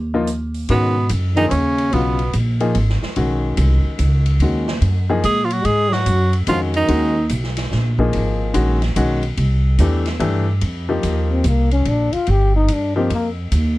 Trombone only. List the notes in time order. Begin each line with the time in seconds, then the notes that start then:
0.69 B2
1.35 D#3
1.47 C#3
1.91 B2
5.23 G#3
5.44 F3
5.51 F#3
5.64 G#3
5.90 F#3
6.48 F3
6.75 D#3
11.31 C4
11.47 A#3
11.72 C#4
11.88 D4
12.13 F4
12.30 G4
12.56 D#4
12.73 D4
12.97 C4
13.13 A#3